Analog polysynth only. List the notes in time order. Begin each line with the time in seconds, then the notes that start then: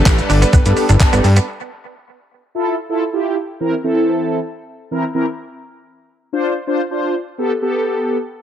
Already playing: B3 D4 G4 A4
0.65 B3 D4 G4 A4
1.00 B3 D4 G4 A4
2.55 E4 F4 A4
2.89 E4 F4 A4
3.13 E4 F4 G4
3.60 E3 C4 E4 A#4
3.84 E3 C4 E4 A4
4.91 E3 C4 E4 A#4
5.14 E3 C4 E4 A#4
6.33 D4 F4 C5
6.67 D4 F4 C5
6.91 D4 F4 C5
7.38 B3 G4 A4
7.62 B3 G4 A4